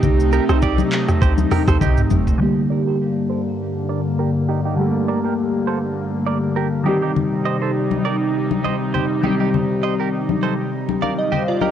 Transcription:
Already playing: C3 A3 C4 D#4 G4
0.03 C2, kick, low conga, shaker
0.20 shaker
0.33 G4 A#4, shaker
0.49 C2 A4 C5, cross-stick, shaker
0.62 G4 D5, kick, shaker
0.78 high conga, shaker
0.92 clap, shaker
1.09 cross-stick, mid tom, shaker
1.22 D2 G4 C5, kick, shaker
1.38 high conga, shaker
1.51 G4 A#4, cross-stick, mid tom, open hi-hat, high conga, shaker
1.68 D#2 A4 C5, kick, cross-stick, shaker
1.81 C2 D#4 G4, kick, high tom, low conga, shaker
1.98 mid tom, shaker
2.10 F1, mid tom, high conga, shaker
2.27 floor tom, shaker
2.38 G2 D3 G3 A#3
2.43 G4
2.70 A#4 D5
2.87 G4 A#4
3.30 A4 C5
3.89 A#4 D5
4.19 G4 A#4
4.49 D#4 G4
4.65 D#4 G4
4.76 D3 G3 A3
4.81 G4
4.85 A#3
5.08 A#4 D5
5.24 G4 A#4
5.67 A4 C5
6.27 A#4 D5
6.56 G4 A#4
6.84 C3 D#3 G3 C4 D#4 G4
6.89 G4
7.02 D#4 G4
7.16 low conga
7.46 C5 D#5
7.62 A4 C5
7.91 high conga
8.05 A#4 D5
8.51 high conga
8.64 C5 D#5, high conga
8.94 G4 C5, low conga
9.21 D#3 G3 C4 D#4 G4, high conga
9.26 G4
9.40 D#4 G4
9.54 low conga
9.83 C5 D#5
10.00 G4 A#4
10.29 high conga
10.43 A4 C5
10.89 high conga
11.02 A#4 D5 F5, high conga
11.18 D#5
11.32 D#4 G4 C5, low conga
11.48 F4 D5
11.61 G4 A#4 D#5, high conga

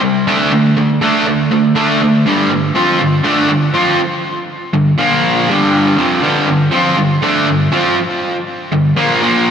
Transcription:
0.01 C3 G3
0.27 D3 A3 D4
0.52 D3 A3
0.77 D3 A3
1.01 D3 A3 D4
1.27 D3 A3
1.51 D3 A3
1.75 D3 A3 D4
2.02 D3 A3
2.26 G2 D3 G3
2.50 G2 D3
2.75 F3 C4 F4
2.99 G2 D3
3.24 D3 A3 D4
3.49 G2 D3
3.74 F3 C4 F4
4.73 G2 D3
4.98 A#2 F3 A#3
5.48 G2 D3 G3
5.97 F2 C3 F3
6.23 G2 D3 G3
6.49 G2 D3
6.72 F3 C4 F4
6.97 G2 D3
7.22 D3 A3 D4
7.47 G2 D3
7.72 F3 C4 F4
8.72 G2 D3
8.96 A#2 F3 A#3
9.21 A#2 F3 A#3

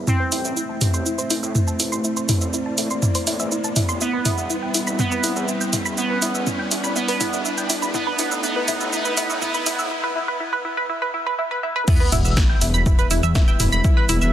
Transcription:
Already playing: E4, riser
0.07 A3 C4 E4 C5 E5, mid tom, shaker
0.20 C5
0.32 A1 E4, open hi-hat, shaker
0.45 A1 E5, shaker
0.57 E4, shaker
0.69 A5
0.81 A1 E4, mid tom, open hi-hat, shaker
0.94 A1 C6, shaker
1.06 E4, shaker
1.18 C5, shaker
1.30 A1 E4, open hi-hat, shaker
1.43 A2 E5, shaker
1.55 E4, mid tom, shaker
1.67 A5, shaker
1.80 A1 E4, open hi-hat, shaker
1.92 A1 C6, shaker
2.04 E4 D5, shaker
2.17 C5, shaker
2.29 A1 E4, mid tom, open hi-hat, shaker
2.41 A1 E5, shaker
2.53 E4, shaker
2.66 A5
2.78 A2 E4, open hi-hat, shaker
2.90 G1 C6, shaker
3.02 E4, mid tom, shaker
3.15 C5, open hi-hat, shaker
3.27 A2 E4, open hi-hat, shaker
3.39 E2 E5, shaker
3.52 E4, shaker
3.64 A5, shaker
3.76 A1 E4, mid tom, open hi-hat, shaker
3.89 A1 C6, shaker
4.01 G3 B3 E4 B4 E5, shaker
4.13 B4
4.25 E1 E4, mid tom, open hi-hat, shaker
4.38 E1 E5, shaker
4.50 E4, shaker
4.62 G5
4.74 E1 E4, open hi-hat, shaker
4.87 E1 B5, shaker
4.99 B3 E4, mid tom, shaker
5.12 B4, shaker
5.24 E1 E4, open hi-hat, shaker
5.36 E2 E5, shaker
5.48 E4, shaker
5.61 G5, shaker
5.73 E1 E4, mid tom, open hi-hat, shaker
5.85 E1 B5, shaker
5.97 B3 E4 D5, shaker
6.10 B4
6.22 E1 E4, open hi-hat, shaker
6.35 E1 E5, shaker
6.47 E4, mid tom, shaker
6.59 G5
6.71 E2 E4, open hi-hat, shaker
6.84 D1 B5, shaker
6.96 B3 E4, shaker
7.08 B4, open hi-hat, shaker
7.20 E1 E4, mid tom, open hi-hat, shaker
7.33 E1 E5, shaker
7.45 E4, shaker
7.58 G5, shaker
7.70 E1 E4, open hi-hat, shaker
7.82 E1 B5, shaker
7.94 A3 B3 E4 A4 E5, mid tom, shaker
8.07 B4
8.19 A1 E4, open hi-hat, shaker
8.31 A1 E5, shaker
8.43 B3 E4, shaker
8.56 B4
8.68 A1 E4, mid tom, open hi-hat, shaker
8.81 A1 E5, shaker
8.92 B3 E4, shaker
9.05 B4, shaker
9.17 A1 E4, open hi-hat, shaker
9.30 A2 E5, shaker
9.42 B3 E4, mid tom, shaker
9.54 B4, shaker
9.66 A1 E4, open hi-hat, shaker
9.79 A1 E5, shaker
9.91 E4
10.04 B4
10.16 E4
10.28 B4
10.40 E4
10.53 B4
10.65 E4
10.77 B4
10.89 E4
11.02 B4
11.14 E4
11.26 B4
11.39 E4
11.51 B4
11.63 E4
11.76 B4
11.88 G3 B3 E4 B4 E5, kick, crash, sub drop, shaker
12.00 B4
12.12 E1 E4, mid tom, open hi-hat, shaker
12.25 E1 E5, shaker
12.37 E4, kick, snare, shaker
12.49 G5
12.61 E1 E4, open hi-hat, shaker
12.74 E1 B5, shaker
12.86 E4, kick, mid tom, shaker
12.99 B4, shaker
13.11 E1 E4, open hi-hat, shaker
13.23 E2 E5, shaker
13.35 E4, kick, snare, shaker
13.48 G5, shaker
13.60 E1 E4, mid tom, open hi-hat, shaker
13.72 E1 B5, shaker
13.84 E4, kick, shaker
13.97 B4
14.09 E1 E4, open hi-hat, shaker
14.21 E1 E5, shaker

